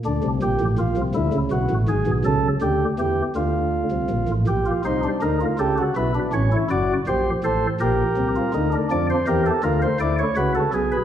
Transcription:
<<
  \new Staff \with { instrumentName = "Pipe organ" } { \time 6/8 \key d \phrygian \tempo 4. = 54 << { r2. | r2. | r8 c''8 bes'8 a'8 b'8 cis''8 | d''8 c''8 c''8 bes'4. |
d''16 c''16 bes'16 a'16 bes'16 c''16 d''16 cis''16 b'16 a'16 gis'16 b'16 | } \\ { d'8 g'8 f'8 e'8 fis'8 gis'8 | a'8 g'8 g'8 f'4. | g'16 f'16 ees'16 d'16 ees'16 f'16 g'16 fis'16 e'16 d'16 cis'16 e'16 | fis'8 g'8 a'8 g'8. f'16 ees'16 d'16 |
d'8 g'8 f'8 e'8 fis'8 r8 | } >> }
  \new Staff \with { instrumentName = "Pipe organ" } { \clef bass \time 6/8 \key d \phrygian <d, d>16 <c, c>16 <bes,, bes,>16 <a,, a,>16 <bes,, bes,>16 <c, c>16 <d, d>16 <cis, cis>16 <b,, b,>16 <a,, a,>16 <gis,, gis,>16 <b,, b,>16 | <cis, cis>8 <d, d>8 <e, e>8 <d, d>8. <c, c>16 <bes,, bes,>16 <a,, a,>16 | <bes,, bes,>8 <c, c>8 <d, d>8 <cis, cis>8 <b,, b,>8 <a,, a,>8 | <fis,, fis,>8 <bes,, bes,>8 <a,, a,>8 <bes,, bes,>8 <c, c>8 <d, d>8 |
<f, f>8 <e, e>8 <d, d>8 <d, d>8 <cis, cis>8 <b,, b,>8 | }
>>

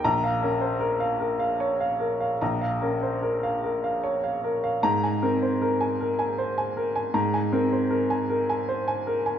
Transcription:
\new Staff \with { instrumentName = "Upright piano" } { \time 3/4 \key aes \major \tempo 4 = 78 << { <bes,, bes''>8 des'4 r4. | bes,,8 des'4 r4. | <aes, bes''>8 c'4 r4. | aes,8 c'4 r4. | } \\ { r16 f''16 bes'16 c''16 bes'16 f''16 bes'16 f''16 des''16 f''16 bes'16 f''16 | bes''16 f''16 bes'16 c''16 bes'16 f''16 bes'16 f''16 des''16 f''16 bes'16 f''16 | r16 aes''16 bes'16 c''16 bes'16 aes''16 bes'16 aes''16 c''16 aes''16 bes'16 aes''16 | bes''16 aes''16 bes'16 c''16 bes'16 aes''16 bes'16 aes''16 c''16 aes''16 bes'16 aes''16 | } >> }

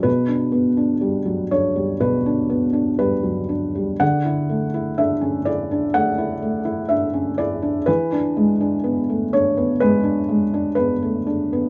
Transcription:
\new Staff \with { instrumentName = "Felt piano" } { \time 4/4 \key g \lydian \tempo 4 = 62 << { b'4. cis''8 b'4 b'4 | fis''4 e''8 d''8 fis''4 e''8 d''8 | b'4. cis''8 b'4 b'4 | } \\ { b,16 d'16 b16 d'16 g16 fis16 d'16 g16 b,16 d'16 b16 d'16 g16 fis16 d'16 g16 | d16 e'16 a16 e'16 d'16 cis'16 e'16 d'16 a16 e'16 a16 e'16 d'16 cis'16 e'16 d'16 | e16 d'16 gis16 d'16 b16 a16 d'16 b16 gis16 d'16 gis16 d'16 b16 a16 d'16 b16 | } >> }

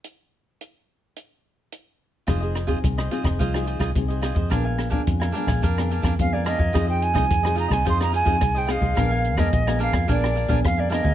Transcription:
<<
  \new Staff \with { instrumentName = "Flute" } { \time 4/4 \key f \minor \tempo 4 = 108 r1 | r1 | r2. f''16 d''16 ees''8~ | ees''16 g''16 aes''4 bes''16 aes''16 c'''16 bes''16 aes''8. g''16 f''8~ |
f''8. ees''8. f''8 d''4 f''16 d''16 ees''8 | }
  \new Staff \with { instrumentName = "Cavaquinho" } { \time 4/4 \key f \minor r1 | <f' aes' c'' ees''>16 <aes' c'' ees''>8 <f' aes' c'' ees''>16 r16 <aes' c'' ees''>16 <f' aes' c'' ees''>16 <aes' c'' ees''>16 <f' aes' c'' ees''>8 <f' aes' c'' ees''>16 <f' aes' c'' ees''>16 r16 <aes' c'' ees''>16 <f' aes' c'' ees''>16 <aes' c'' ees''>16 | <d' bes' f'' aes''>16 <bes' f'' aes''>8 <d' bes' f'' aes''>16 r16 <bes' f'' aes''>16 <d' bes' f'' aes''>16 <bes' f'' aes''>16 <d' bes' f'' aes''>8 <d' bes' f'' aes''>16 <d' bes' f'' aes''>16 r16 <bes' f'' aes''>16 <d' bes' f'' aes''>16 <bes' f'' aes''>16 | <f' aes' c'' ees''>16 <aes' c'' ees''>8 <f' aes' c'' ees''>16 r16 <aes' c'' ees''>16 <f' aes' c'' ees''>16 <aes' c'' ees''>16 <f' aes' c'' ees''>8 <f' aes' c'' ees''>16 <f' aes' c'' ees''>16 r16 <aes' c'' ees''>16 <f' aes' c'' ees''>16 <aes' c'' ees''>16 |
<d' bes' f'' aes''>16 <bes' f'' aes''>8 <d' bes' f'' aes''>16 r16 <bes' f'' aes''>16 <d' bes' f'' aes''>16 <bes' f'' aes''>16 <d' bes' f'' aes''>8 <d' bes' f'' aes''>16 <d' bes' f'' aes''>16 r16 <bes' f'' aes''>16 <d' bes' f'' aes''>16 <bes' f'' aes''>16 | }
  \new Staff \with { instrumentName = "Nylon-string guitar" } { \time 4/4 \key f \minor << { r1 | <c' ees' aes'>8 r16 <c' ees' aes'>8. <c' ees' aes'>8. <c' ees' aes'>8. <c' ees' aes'>8. r16 | <aes ces' d'>8. <aes ces' d'>8. <aes ces' d'>8 r16 <aes ces' d'>8. <aes ces' d'>8. r16 | <c' ees' aes'>8. <c' ees' aes'>8 <c' ees' aes'>8. <c' ees' aes'>8 r16 <c' ees' aes'>8. <c' ees' aes'>8 |
<aes ces' d'>8. <aes ces' d'>8 <aes ces' d'>8. <aes ces' d'>8 r16 <aes ces' d'>8. <aes ces' d'>8 | } \\ { r1 | f4 c4 f4 c4 | bes,4 f4 bes,4 f4 | f4 c4 f4 c4 |
bes,4 f4 bes,4 f4 | } >> }
  \new Staff \with { instrumentName = "Fingered electric bass" } { \clef bass \time 4/4 \key f \minor r1 | f,,4 c,8 r16 f,,16 c,8. c,16 c,8. f,16 | bes,,4 f,8 r16 bes,,16 f,8. f,16 f,8. f,16 | f,8. c,16 f,8. c,16 f,8. f,16 c,8. c,16 |
bes,,8. f,16 bes,,8. f,16 bes,,8. bes,,16 f,8. d,16 | }
  \new DrumStaff \with { instrumentName = "Drums" } \drummode { \time 4/4 hh4 hh4 hh4 hh4 | <hh bd ss>16 hh16 <hh ss>16 <hh bd>16 <hh bd>16 ss16 hh16 <bd ss>16 <hh bd>16 ss16 hh16 <bd ss>16 <hh bd>16 hh16 <hh ss>16 bd16 | <hh bd ss>8 <hh ss>16 bd16 <hh bd>16 ss16 hh16 <hh bd ss>16 <hh bd>16 <hh ss>16 hh16 <hh bd ss>16 <hh bd>8 <hh ss>16 bd16 | <hh bd ss>8 hh16 <hh bd ss>16 <hh bd>16 ss16 hh16 <hh bd ss>16 <hh bd>16 ss16 hh16 bd16 <hh bd ss>16 hh16 <hh ss>16 bd16 |
<hh bd ss>8 hh16 <bd ss>16 <hh bd>16 ss16 hh16 <hh bd ss>16 <hh bd>16 ss16 hh16 <hh bd>16 <hh bd ss>8 <hh ss>16 bd16 | }
>>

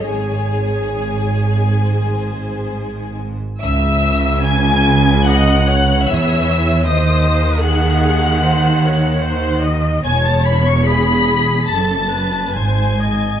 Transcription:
<<
  \new Staff \with { instrumentName = "Violin section" } { \time 4/4 \key cis \minor \tempo 4 = 72 cis''2 bis'4.~ bis'16 r16 | e'''4 gis'''4 fis'''4 e'''4 | dis'''4 fis'''2~ fis'''8 r8 | gis'''16 a'''16 b'''16 cis''''16 b'''4 a'''4 gis'''4 | }
  \new Staff \with { instrumentName = "Violin section" } { \time 4/4 \key cis \minor gis''2.~ gis''8 r8 | e''4 gis''4 fis''4 e''4 | dis''4 fis''2~ fis''8 r8 | gis''16 a''16 b''16 cis'''16 b''4 a''4 gis''4 | }
  \new Staff \with { instrumentName = "Viola section" } { \time 4/4 \key cis \minor gis'2.~ gis'8 r8 | r2 dis''8 cis''4. | bis'4 gis'4 bis'8 cis''8 bis'8 dis''8 | cis''4 gis'4 a'8 b'8 bis'8 dis''8 | }
  \new Staff \with { instrumentName = "Cello section" } { \clef bass \time 4/4 \key cis \minor gis,2.~ gis,8. r16 | cis2. e4 | dis1 | e,2 fis,4 gis,4 | }
  \new Staff \with { instrumentName = "Double bass section" } { \clef bass \time 4/4 \key cis \minor gis,,2.~ gis,,8. r16 | cis,2. e,4 | dis,1 | e,,2 fis,,4 gis,,4 | }
>>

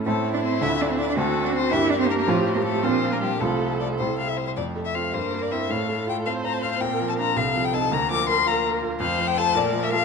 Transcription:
<<
  \new Staff \with { instrumentName = "Violin" } { \time 6/8 \key f \major \tempo 4. = 108 a'8. d''16 c''8 e''8 d''16 c''16 d''16 d''16 | a'8. d''16 c''8 e''8 d''16 c''16 bes'16 bes'16 | f'8. bes'16 a'8 c''8. bes'16 g'8 | a'4 d''8 c''8 f''16 e''16 c''16 c''16 |
d''8. e''16 f''8 c''8. d''16 e''8 | f''4 g''8 f''8 bes''16 a''16 f''16 f''16 | g''8. a''16 bes''8 f''8. g''16 a''8 | bes''8 d'''8 c'''8 bes''8 r4 |
f''8. g''16 a''8 d''8. e''16 f''8 | }
  \new Staff \with { instrumentName = "Viola" } { \time 6/8 \key f \major e'2. | fis'4. g'4.~ | g'4. f'4. | a'2~ a'16 r8. |
r4. bes'4. | a'4. c''4. | bes'4. a'4. | bes'2. |
c''4. bes'4. | }
  \new Staff \with { instrumentName = "Grand piano" } { \time 6/8 \key f \major <a, a c' e'>4. <d, a d' f'>4. | <d, c' d' fis'>4. <g, bes d' g'>4. | <a, f c' f'>4. <bes, f d' f'>4. | <c, f c' f'>4. <c, g c' e'>4. |
f,8 a8 <c' f'>8 g,8 bes8 <c' e'>8 | a,8 a8 f'8 a'8 c''8 a'8 | bes,8 f8 <d' f'>8 c,8 f8 <ees' a'>8 | d,8 f8 bes'8 f'8 f''8 f'8 |
f,8 f8 <f' a'>8 bes,8 f8 <f' a'>8 | }
  \new Staff \with { instrumentName = "Cello" } { \time 6/8 \key f \major a8. d'16 c'8 e'8 d'16 c'16 d'16 d'16 | a8. d'16 c'8 e'8 d'16 c'16 bes16 bes16 | f8. bes16 a8 c'8. bes16 g8 | a4. r4. |
a4. bes4. | a4. c'4. | c'2. | bes4. bes4. |
a2. | }
>>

